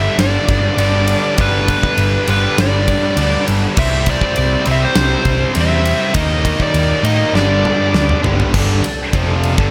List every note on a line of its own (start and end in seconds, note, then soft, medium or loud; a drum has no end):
0.00 1.35 G2 medium
0.00 1.36 D3 medium
0.00 1.38 G3 medium
0.00 1.36 B3 medium
0.00 1.35 D4 loud
0.00 3.73 D4 medium
0.00 3.73 B4 medium
0.00 0.20 E5 loud
0.00 3.73 G5 medium
0.18 0.36 G1 loud
0.18 1.42 D5 medium
0.18 snare loud
0.18 ride loud
0.48 0.67 G1 loud
0.48 kick loud
0.48 ride medium
0.77 1.13 G1 medium
0.77 1.35 G2 medium
0.77 1.36 D3 medium
0.77 1.40 G3 medium
0.77 ride loud
1.08 ride medium
1.37 1.75 G1 medium
1.37 2.25 G2 loud
1.37 2.26 D3 loud
1.37 2.29 G3 loud
1.37 2.26 B3 loud
1.37 2.26 D4 loud
1.37 kick loud
1.37 ride loud
1.41 1.68 B4 medium
1.68 2.29 B4 medium
1.68 kick medium
1.68 ride medium
1.83 kick medium
1.98 2.16 G1 medium
1.98 ride loud
2.27 2.46 G1 medium
2.27 3.76 G2 medium
2.27 3.75 D3 medium
2.27 3.76 G3 medium
2.27 3.75 B3 medium
2.27 3.75 D4 medium
2.27 2.59 B4 medium
2.27 ride medium
2.58 2.94 G1 loud
2.58 3.44 D5 medium
2.58 snare loud
2.58 ride loud
2.88 kick medium
2.88 ride medium
3.17 3.35 D2 medium
3.17 3.75 G2 medium
3.17 3.75 D3 medium
3.17 3.78 G3 medium
3.17 ride loud
3.48 3.66 G1 loud
3.48 ride medium
3.75 4.13 C2 loud
3.75 4.63 C3 loud
3.75 4.68 G3 loud
3.75 4.65 C4 loud
3.75 6.13 E4 medium
3.75 4.64 E4 loud
3.75 6.14 C5 medium
3.75 4.08 E5 loud
3.75 8.50 G5 medium
3.75 kick loud
3.75 crash loud
4.06 4.64 D5 loud
4.06 kick medium
4.06 ride medium
4.21 kick medium
4.36 4.55 C2 medium
4.36 ride loud
4.65 4.85 C2 loud
4.65 6.13 C3 medium
4.65 6.14 G3 medium
4.65 6.14 C4 medium
4.65 6.13 E4 medium
4.65 ride medium
4.71 4.83 E5 loud
4.85 4.97 C5 loud
4.95 5.14 C2 loud
4.95 5.52 C5 medium
4.95 snare loud
4.95 ride loud
5.25 5.44 C2 medium
5.25 kick medium
5.25 ride medium
5.54 5.92 E2 medium
5.54 6.12 C3 medium
5.54 6.14 G3 medium
5.54 6.14 C4 medium
5.54 ride loud
5.61 6.14 E5 loud
5.85 ride medium
6.13 6.51 D#2 loud
6.13 7.02 D#3 medium
6.13 7.02 G3 loud
6.13 7.03 A#3 loud
6.13 7.01 D#4 loud
6.13 6.61 D#5 loud
6.13 kick loud
6.13 ride loud
6.19 7.35 D#4 medium
6.19 7.35 A#4 medium
6.45 kick medium
6.45 ride medium
6.60 7.05 D5 loud
6.60 kick medium
6.74 6.92 D#2 medium
6.74 ride loud
7.02 7.22 A2 medium
7.02 7.33 G3 medium
7.02 7.32 A#3 medium
7.02 7.32 D#4 medium
7.02 7.32 D#5 loud
7.02 ride medium
7.07 7.33 D#3 medium
7.33 7.69 G1 loud
7.33 8.21 G2 medium
7.33 8.22 D3 loud
7.33 8.22 G3 medium
7.33 8.21 B3 loud
7.33 8.53 B4 medium
7.33 8.20 D5 medium
7.33 snare medium
7.37 8.21 D4 loud
7.37 8.53 D4 medium
7.65 mid tom medium
7.94 8.12 D2 loud
7.94 snare loud
8.09 mid tom medium
8.22 8.42 G1 loud
8.22 8.52 G2 medium
8.22 8.52 D3 medium
8.22 8.52 G3 medium
8.22 8.51 B3 medium
8.22 8.51 D4 medium
8.22 floor tom loud
8.40 floor tom medium
8.53 8.82 G1 loud
8.53 8.81 G2 loud
8.53 8.83 D3 loud
8.53 8.83 G3 loud
8.53 9.71 G3 medium
8.53 9.71 D4 medium
8.53 9.71 A4 medium
8.53 kick loud
8.53 crash loud
8.82 muted distorted electric guitar stroke medium
8.82 muted picked electric bass stroke soft
8.82 muted overdriven electric guitar stroke medium
8.82 ride medium
9.12 9.55 F1 loud
9.12 9.55 F2 medium
9.12 9.55 C3 loud
9.12 9.57 F3 loud
9.12 kick loud
9.12 ride loud
9.43 ride medium
9.55 9.71 G1 loud
9.55 9.71 G2 medium
9.55 9.71 D3 loud
9.55 kick loud